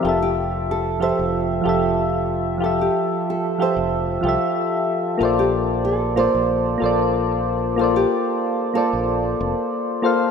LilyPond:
<<
  \new Staff \with { instrumentName = "Synth keys" } { \time 4/4 \key f \major \tempo 4 = 93 <f f' g' a' e''>4. <f f' g' a' e''>4 <f f' g' a' e''>4. | <f f' g' a' e''>4. <f f' g' a' e''>4 <f f' g' a' e''>4. | <bes f' a' c'' d''>4. <bes f' a' c'' d''>4 <bes f' a' c'' d''>4. | <bes f' a' c'' d''>4. <bes f' a' c'' d''>4 r4 <bes f' a' c'' f''>8 | }
  \new Staff \with { instrumentName = "Nylon-string guitar" } { \time 4/4 \key f \major f'16 g'8. a'8 c''2 r8 | f'16 g'8. a'8 c''2 r8 | f'16 g'8. a'8 c''2 r8 | f'16 g'4~ g'16 a'2 r8 | }
  \new Staff \with { instrumentName = "Fingered electric bass" } { \clef bass \time 4/4 \key f \major f,,4.~ f,,16 f,,8. f,,4.~ | f,,8 r4 r16 f,,8. c,16 r4 r16 | bes,,4.~ bes,,16 bes,,8. bes,,4.~ | bes,,8 r4 r16 bes,,8. f,,16 r4 r16 | }
>>